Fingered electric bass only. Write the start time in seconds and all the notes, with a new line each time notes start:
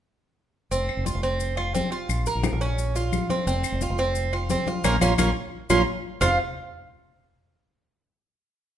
0.71 F1
0.97 F1
1.15 F1
2.09 A#1
2.35 A#1
2.52 A#1
3.47 F1
3.72 F1
3.90 F1
4.84 A#1
5.01 A#1
5.18 A#1
5.70 A#1
6.21 F1